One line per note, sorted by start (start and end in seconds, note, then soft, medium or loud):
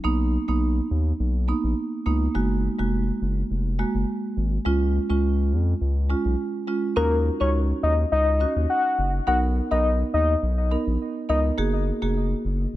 0.04 0.37 B1 loud
0.04 0.22 A#3 medium
0.04 0.22 B3 medium
0.04 0.22 D#4 loud
0.48 0.80 B1 medium
0.48 0.65 A#3 medium
0.48 0.65 B3 medium
0.48 0.65 D#4 medium
0.91 1.13 D#2 medium
1.20 1.53 B1 medium
1.48 1.66 A#3 medium
1.48 1.66 B3 medium
1.48 1.67 D#4 medium
1.64 1.74 A#1 medium
2.06 2.28 C#2 loud
2.06 2.24 A#3 medium
2.06 2.24 B3 medium
2.06 2.24 D#4 medium
2.35 2.68 F#1 loud
2.35 2.53 G#3 medium
2.35 2.53 A#3 medium
2.35 2.53 F#4 loud
2.79 3.11 F1 medium
2.79 2.96 G#3 medium
2.79 2.96 A#3 medium
2.79 2.96 F#4 medium
3.21 3.43 F#1 loud
3.50 3.84 F1 medium
3.79 3.97 G#3 medium
3.79 3.97 A#3 medium
3.79 3.97 F#4 medium
3.94 4.05 F#1 loud
4.37 4.59 G#1 loud
4.65 4.99 C#2 loud
4.65 4.84 G#3 medium
4.65 4.84 C#4 medium
4.65 4.84 F4 loud
5.09 5.54 C#2 medium
5.09 5.26 G#3 medium
5.09 5.27 C#4 medium
5.09 5.27 F4 medium
5.52 5.74 F2 loud
5.81 6.14 C#2 medium
6.10 6.28 G#3 medium
6.10 6.28 C#4 medium
6.10 6.28 F4 medium
6.25 6.35 B1 medium
6.67 6.86 G#3 medium
6.67 6.86 C#4 medium
6.67 6.86 F4 medium
6.96 7.30 D#2 loud
6.96 7.14 C#4 medium
6.96 7.15 D#4 medium
6.96 7.15 F#4 loud
6.96 7.16 A#4 loud
7.40 7.73 C#2 medium
7.40 7.57 C#4 medium
7.40 7.57 D#4 medium
7.40 7.57 F#4 medium
7.40 7.50 C#5 medium
7.83 8.05 D#2 loud
7.83 7.93 D#5 medium
8.12 8.45 C#2 loud
8.12 8.53 D#5 loud
8.40 8.59 C#4 medium
8.40 8.59 D#4 medium
8.40 8.59 F#4 medium
8.56 8.66 D#2 medium
8.70 9.11 F#5 medium
8.98 9.20 F#1 loud
9.27 9.61 B1 loud
9.27 9.45 B3 medium
9.27 9.45 D#4 medium
9.27 9.45 A#4 loud
9.27 9.38 F#5 loud
9.71 10.03 B1 medium
9.71 9.88 B3 medium
9.71 9.88 D#4 medium
9.71 9.88 A#4 medium
9.71 9.91 D#5 medium
10.14 10.35 D#2 medium
10.14 10.33 D#5 medium
10.43 10.76 B1 medium
10.71 10.89 B3 medium
10.71 10.89 D#4 medium
10.71 10.90 A#4 medium
10.87 10.97 A#1 loud
11.29 11.51 C#2 loud
11.29 11.47 B3 medium
11.29 11.47 D#4 medium
11.29 11.47 A#4 medium
11.29 11.40 D#5 medium
11.58 11.91 F#1 loud
11.58 11.76 A#3 medium
11.58 11.76 F#4 medium
11.58 11.76 G#4 loud
12.02 12.34 F1 medium
12.02 12.19 A#3 medium
12.02 12.19 F#4 medium
12.02 12.19 G#4 medium
12.45 12.66 F#1 medium